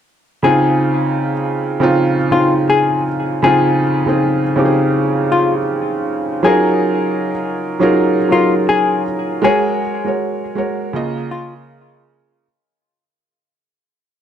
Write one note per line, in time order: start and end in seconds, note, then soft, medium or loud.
0.43 1.30 C#3 medium
0.43 1.31 C4 medium
0.43 1.31 D#4 medium
0.43 1.32 F4 loud
0.43 1.39 G#4 medium
1.80 2.16 C#3 medium
1.80 2.16 C4 medium
1.80 2.17 D#4 medium
1.80 2.18 F4 loud
2.31 3.04 C#3 medium
2.31 3.05 C4 medium
2.31 3.05 D#4 medium
2.31 2.54 F4 medium
2.31 3.06 F4 medium
2.70 3.03 G#4 medium
3.42 3.79 C#3 medium
3.42 3.80 C4 medium
3.42 3.81 D#4 medium
3.42 3.81 F4 loud
3.42 4.39 G#4 medium
4.06 4.41 C#3 medium
4.06 4.42 C4 medium
4.06 4.43 D#4 medium
4.06 4.43 G#4 medium
4.56 5.57 C#3 medium
4.56 5.58 C4 medium
4.56 5.58 D#4 medium
4.56 4.66 G4 medium
4.65 5.62 G#4 medium
5.32 5.53 F4 medium
6.43 7.30 F#3 medium
6.43 7.31 C#4 medium
6.43 7.31 D#4 medium
6.43 7.31 F4 medium
6.43 7.40 G#4 medium
6.43 7.32 G#4 medium
6.43 7.32 A#4 loud
7.80 8.16 F#3 medium
7.80 8.16 C#4 medium
7.80 8.16 D#4 medium
7.80 8.17 F4 medium
7.80 8.17 G#4 medium
7.80 8.17 A#4 medium
8.29 9.03 F#3 medium
8.29 9.03 C#4 medium
8.29 9.04 D#4 medium
8.29 9.04 F4 medium
8.29 8.54 F4 medium
8.29 9.04 G#4 medium
8.29 9.05 A#4 medium
8.69 9.02 G#4 medium
9.42 9.79 G#3 loud
9.42 9.80 F#4 medium
9.42 10.39 G#4 medium
9.42 9.80 A#4 medium
9.42 9.80 C#5 loud
10.04 10.41 G#3 medium
10.04 10.41 F#4 medium
10.04 10.42 A#4 medium
10.04 10.42 C#5 medium
10.55 10.93 G#3 medium
10.55 10.93 F#4 medium
10.55 10.94 A#4 medium
10.55 10.95 C#5 medium
10.93 12.16 C#3 medium
10.93 12.16 A#3 medium
10.93 12.17 F4 medium
10.93 12.17 D#5 medium
11.31 11.53 F4 medium